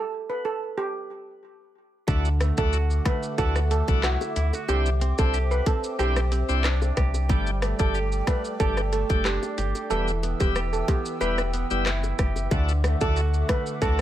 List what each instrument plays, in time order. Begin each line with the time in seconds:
0.30 steel pan B4
0.45 steel pan A4
0.78 steel pan G4
2.07 sub bass D2, clean electric guitar D3, tonewheel organ A3 D4 E4 F#4, analog synth pad A4 E5 F#5 D6, kick, high bongo, shaker
2.25 shaker
2.40 clean electric guitar A3, cross-stick, closed hi-hat, high bongo, shaker
2.57 sub bass D2, tonewheel organ A3 D4 E4 F#4, steel pan A4, kick, high bongo, shaker
2.73 clean electric guitar F#4, shaker
2.90 shaker
3.05 clean electric guitar A3, steel pan B4, kick, cross-stick, closed hi-hat, low bongo, shaker
3.23 shaker
3.38 sub bass D2, tonewheel organ A3 D4 E4 F#4, clean electric guitar F#4, steel pan A4, kick, high bongo, shaker
3.56 cross-stick, shaker
3.71 clean electric guitar A3, steel pan A4, closed hi-hat, shaker
3.88 sub bass C2, tonewheel organ A3 D4 E4 F#4, kick, shaker
4.03 clean electric guitar E4, steel pan F#4, cross-stick, clap, shaker
4.21 high bongo, shaker
4.36 sub bass D2, clean electric guitar E4, closed hi-hat, low bongo, shaker
4.53 clean electric guitar F#4, high bongo, shaker
4.68 sub bass C2, tonewheel organ C4 D4 E4 G4, steel pan G4, analog synth pad C5 G5, high bongo, shaker
4.86 shaker
5.01 clean electric guitar C4, closed hi-hat, high bongo, shaker
5.18 sub bass C2, tonewheel organ C4 D4 E4 G4, steel pan A4, kick, high bongo, shaker
5.34 clean electric guitar G4, shaker
5.51 steel pan B4, shaker
5.66 clean electric guitar C4, steel pan A4, kick, closed hi-hat, low bongo, shaker
5.84 shaker
5.99 sub bass B1, tonewheel organ C4 D4 E4 G4, steel pan G4, clean electric guitar G4, high bongo, shaker
6.16 cross-stick, shaker
6.32 clean electric guitar C4, closed hi-hat, shaker
6.49 sub bass C2, tonewheel organ C4 D4 E4 G4, shaker
6.64 clean electric guitar D4, cross-stick, clap, shaker
6.82 high bongo, shaker
6.97 sub bass C2, clean electric guitar G4, kick, cross-stick, closed hi-hat, low bongo, shaker
7.14 high bongo, shaker
7.29 sub bass G1, tonewheel organ G3 A3 D4 G4, clean electric guitar G3, analog synth pad A4 D5 D6, kick, high bongo, shaker
7.47 shaker
7.62 clean electric guitar A3, cross-stick, closed hi-hat, high bongo, shaker
7.79 sub bass G1, tonewheel organ G3 A3 D4 G4, steel pan A4, kick, high bongo, shaker
7.95 clean electric guitar G4, shaker
8.12 shaker
8.27 clean electric guitar A3, steel pan B4, kick, cross-stick, closed hi-hat, low bongo, shaker
8.45 shaker
8.60 sub bass G1, tonewheel organ G3 A3 D4 G4, clean electric guitar G4, steel pan A4, kick, high bongo, shaker
8.77 cross-stick, shaker
8.93 clean electric guitar A3, steel pan A4, closed hi-hat, shaker
9.09 sub bass F#1, tonewheel organ G3 A3 D4 G4, kick, shaker
9.25 clean electric guitar D4, steel pan G4, cross-stick, clap, shaker
9.43 high bongo, shaker
9.58 sub bass G1, clean electric guitar G4, closed hi-hat, low bongo, shaker
9.75 high bongo, shaker
9.90 sub bass E1, clean electric guitar E3, tonewheel organ G3 B3 E4 G4, steel pan A4, analog synth pad B4 E5 G5 E6, high bongo, shaker
10.08 shaker
10.23 clean electric guitar B3, closed hi-hat, high bongo, shaker
10.40 sub bass E1, tonewheel organ G3 B3 E4 G4, steel pan G4, kick, high bongo, shaker
10.56 clean electric guitar G4, cross-stick, shaker
10.73 steel pan A4, shaker
10.88 clean electric guitar B3, steel pan G4, kick, closed hi-hat, low bongo, shaker
11.06 shaker
11.21 sub bass E1, tonewheel organ G3 B3 E4 G4, clean electric guitar G4, steel pan B4, high bongo, shaker
11.38 cross-stick, shaker
11.54 clean electric guitar B3, closed hi-hat, shaker
11.71 sub bass F#1, tonewheel organ G3 B3 E4 G4, shaker
11.86 clean electric guitar E4, cross-stick, clap, shaker
12.04 high bongo, shaker
12.19 sub bass F#1, clean electric guitar G4, kick, cross-stick, closed hi-hat, low bongo, shaker
12.36 high bongo, shaker
12.51 sub bass D2, clean electric guitar D3, tonewheel organ A3 D4 E4 F#4, analog synth pad A4 F#5 D6, kick, high bongo, shaker
12.69 shaker
12.84 clean electric guitar A3, cross-stick, closed hi-hat, high bongo, shaker
13.01 sub bass D2, tonewheel organ A3 D4 E4 F#4, steel pan A4, kick, high bongo, shaker
13.16 clean electric guitar F#4, shaker
13.34 shaker
13.49 clean electric guitar A3, steel pan B4, kick, cross-stick, closed hi-hat, low bongo, shaker
13.66 shaker
13.82 sub bass D2, tonewheel organ A3 D4 E4 F#4, clean electric guitar F#4, steel pan A4, kick, high bongo, shaker